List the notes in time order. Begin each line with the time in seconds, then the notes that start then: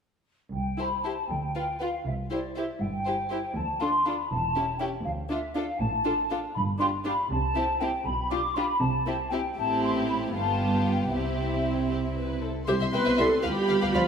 0.53 C2 G5
0.78 E4 G4 C5 B5
1.04 E4 G4 C5 A5
1.29 D2 G5
1.55 F4 B4
1.80 F4 B4 F5
2.05 C2 E5
2.31 E4 G4 C5 D5
2.55 E4 G4 C5 E5
2.81 G1 G2 G5
3.05 E4 G4 C5
3.30 E4 G4 C5
3.55 D2 A5
3.80 D4 F4 A4 C6
4.05 D4 F4 A4 B5
4.30 E1 E2 A5
4.55 C#4 E4 G4
4.79 C#4 E4 G4 G5
5.04 D2 F5
5.29 D4 F4 A4 E5
5.53 D4 F4 A4 F5
5.79 A1 A2 A5
6.05 D4 F4 A4
6.30 D4 F4 A4
6.55 G1 G2 B5
6.80 D4 F4 G4 C6
7.05 D4 F4 G4 B5
7.30 C2 C3 A5
7.55 C4 E4 G4
7.81 C4 E4 G4 G5
8.06 B1 B2 B5
8.30 D4 F4 G4 D6
8.55 D4 F4 G4 B5
8.80 C2 C3 A5
9.06 C4 E4 G4
9.31 C4 E4 G4 G5
9.57 A1 A2 C4 E4 G4 A5
9.84 C6
10.09 B5
10.34 G1 G2 B3 F4 G4 A5
10.86 G5
11.12 C2 C3 C4 E4 G4 E5
11.91 G4
12.17 B4
12.42 A4
12.68 C2 G3 C4 E4 G4 C5 E5 C6
12.81 C2 E5
12.93 C2 B3 B4 E5 G5
13.05 C2 C5 E5
13.18 C2 G3 A3 E4 A4 E5 C6
13.43 D2 G3 B3 F4 G4 B4 F5 B5
13.69 D2 F5
13.81 D2 B4 F5
13.94 D2 F3 F4 D5 F5 B5